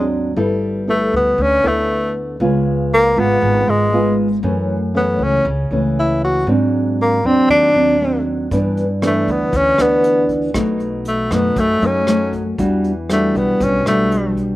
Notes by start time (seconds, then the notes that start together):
Already playing: D#2 G#2 F#3 G#3 C4 D4
0.36 G1 G3 B3 E4 A4
0.88 A3 B3 E4 A4
1.13 D2 B3
1.38 D2 D3
1.42 C#4
1.64 D2 A3 B3 E4 A4
2.40 C#2 C#3 G#3 B3 F4
2.94 A#3
3.16 G#1 G#3 B3 F4
3.41 G#1 G#2
3.68 G#1 G#3
3.92 G#3 B3 F4
4.43 F#2 E3 A3 C#4
4.94 E3 A3 B3 C#4
5.19 C#2
5.23 C#4
5.45 C#2 C#3
5.71 C#2 E3 A3 C#4
5.99 E4
6.25 F#4
6.47 G#2 F#3 C4 D4
7.02 A#3
7.23 D#2 F#3 C4 D4
7.49 D#2 D#3 D4
7.74 D#2 F#3 C4 D4
8.01 F#3 C4 D4
8.51 G2 E3 B3 D4, kick, closed hi-hat
8.77 closed hi-hat
9.02 E3 B3 D4, cross-stick, closed hi-hat
9.07 A3
9.28 D2 B3, kick, closed hi-hat
9.52 D2 D3, kick, closed hi-hat
9.56 C#4
9.78 D2 E3 B3 D4, cross-stick, closed hi-hat
10.04 closed hi-hat
10.29 kick, closed hi-hat
10.54 B1 B2 F#3 A3 D#4, kick, cross-stick, closed hi-hat
10.80 closed hi-hat
11.05 A3, closed hi-hat
11.31 F#2 F#3 A3 B3 D#4, kick, cross-stick, closed hi-hat
11.56 F#2 A3, kick, closed hi-hat
11.82 F#2 F#3 A3 D#4, closed hi-hat
11.86 C#4
12.07 F#3 A3 D#4, cross-stick, closed hi-hat
12.33 kick, closed hi-hat
12.58 E2 E3 G3 D4 F#4, kick, closed hi-hat
12.84 closed hi-hat
13.09 G3 A3 D4 F#4, cross-stick, closed hi-hat
13.35 B1 B3, kick, closed hi-hat
13.60 B1 B2 C#4, kick, closed hi-hat
13.85 B1 G3 A3 D4 F#4, cross-stick, closed hi-hat
14.12 closed hi-hat
14.37 kick, closed hi-hat